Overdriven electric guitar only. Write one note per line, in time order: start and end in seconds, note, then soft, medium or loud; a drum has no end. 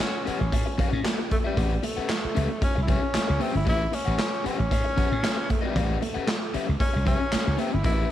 0.00 muted overdriven electric guitar stroke soft
0.25 0.37 C#4 medium
0.25 0.38 G4 medium
0.25 0.38 B4 medium
0.25 0.38 F#5 medium
0.40 muted overdriven electric guitar stroke medium
0.52 muted overdriven electric guitar stroke soft
0.66 muted overdriven electric guitar stroke soft
0.78 0.99 C#4 medium
0.78 0.92 G4 medium
0.78 0.91 B4 medium
0.78 0.91 F#5 medium
0.92 muted overdriven electric guitar stroke soft
1.04 muted overdriven electric guitar stroke soft
1.18 muted overdriven electric guitar stroke soft
1.44 1.55 C#4 medium
1.44 1.56 G4 medium
1.44 1.56 B4 medium
1.44 1.58 E5 medium
1.56 1.71 C#4 medium
1.56 1.72 G4 medium
1.56 1.72 B4 loud
1.56 1.72 F#5 medium
1.83 muted overdriven electric guitar stroke soft
1.97 2.08 C#4 medium
1.97 2.08 G4 medium
1.97 2.07 B4 medium
1.97 2.07 F#5 medium
2.09 muted overdriven electric guitar stroke soft
2.35 2.47 C#4 medium
2.35 2.47 G4 medium
2.35 2.47 B4 medium
2.35 2.48 E5 medium
2.49 muted overdriven electric guitar stroke medium
2.61 muted overdriven electric guitar stroke soft
2.75 muted overdriven electric guitar stroke medium
2.88 3.02 C#4 medium
2.88 3.02 G4 medium
2.88 3.01 B4 medium
2.88 3.01 E5 medium
3.02 muted overdriven electric guitar stroke soft
3.27 muted overdriven electric guitar stroke soft
3.39 3.54 C#4 medium
3.39 3.53 G4 loud
3.39 3.53 B4 loud
3.39 3.52 E5 medium
3.53 muted overdriven electric guitar stroke soft
3.65 3.81 C#4 medium
3.65 3.81 G4 medium
3.65 3.81 B4 medium
3.65 3.81 E5 medium
3.92 muted overdriven electric guitar stroke soft
4.05 4.17 C#4 medium
4.05 4.17 G4 medium
4.05 4.17 B4 medium
4.05 4.16 F#5 medium
4.18 muted overdriven electric guitar stroke soft
4.44 4.56 C#4 medium
4.44 4.57 G4 medium
4.44 4.57 B4 medium
4.44 4.57 F#5 medium
4.59 muted overdriven electric guitar stroke soft
4.71 muted overdriven electric guitar stroke soft
4.84 muted overdriven electric guitar stroke medium
4.96 5.11 C#4 medium
4.96 5.10 G4 medium
4.96 5.10 B4 medium
4.96 5.10 F#5 loud
5.11 muted overdriven electric guitar stroke soft
5.23 muted overdriven electric guitar stroke soft
5.36 muted overdriven electric guitar stroke soft
5.62 5.73 C#4 medium
5.62 5.74 G4 medium
5.62 5.75 B4 medium
5.62 5.76 E5 medium
5.75 5.96 C#4 medium
5.75 5.96 G4 medium
5.75 5.96 B4 medium
5.75 5.96 F#5 medium
6.01 muted overdriven electric guitar stroke soft
6.14 6.26 C#4 medium
6.14 6.26 G4 medium
6.14 6.25 B4 medium
6.14 6.25 F#5 medium
6.27 muted overdriven electric guitar stroke soft
6.54 6.65 C#4 medium
6.54 6.66 G4 medium
6.54 6.66 B4 medium
6.54 6.66 E5 medium
6.67 muted overdriven electric guitar stroke soft
6.80 muted overdriven electric guitar stroke soft
6.93 muted overdriven electric guitar stroke soft
7.06 7.21 C#4 medium
7.06 7.20 G4 medium
7.06 7.19 B4 medium
7.06 7.19 E5 medium
7.20 muted overdriven electric guitar stroke soft
7.46 muted overdriven electric guitar stroke medium
7.57 7.73 C#4 loud
7.57 7.72 G4 loud
7.57 7.71 B4 loud
7.57 7.71 E5 loud
7.72 muted overdriven electric guitar stroke soft
7.84 8.05 C#4 medium
7.84 8.05 G4 medium
7.84 8.05 B4 medium
7.84 8.06 E5 medium